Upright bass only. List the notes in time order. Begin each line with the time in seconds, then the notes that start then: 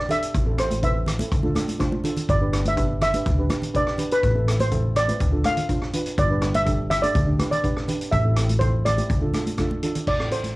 0.34 A1
1.32 D2
2.29 G1
3.26 D2
4.23 A1
5.21 D2
6.18 G1
7.15 D2
8.13 A1
9.10 D2
10.07 A1